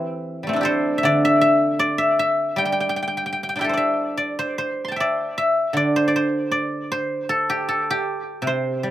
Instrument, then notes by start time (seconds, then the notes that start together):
guzheng
Already playing: E3 C4 E4 G4 A4
0.43 G3 A3
0.49 C4
0.53 D4 E4
0.61 G4 A4
0.65 C5
0.98 E5
1.03 D3 D5
1.25 E5
1.41 E5
1.79 D5
1.98 E5
2.19 E5
2.56 G3 G5
2.65 G5
2.72 G5
2.80 G5
2.89 G5
2.96 G5
3.02 G5
3.08 G5
3.17 G5
3.26 G5
3.33 G5
3.43 G5
3.49 G5
3.56 D4 E4 G5
3.61 G4 A4 G5
3.69 C5
3.73 D5 E5
4.17 D5
4.39 C5
4.58 C5
4.85 A5 C6
4.92 G5
4.96 E5
5.00 D5
5.38 E5
5.73 D3 D5
5.96 C5
6.08 D5
6.16 C5
6.51 D5
6.92 C5
7.29 A4
7.50 G4
7.69 A4
7.90 G4
8.42 C3
8.47 C5
8.83 G3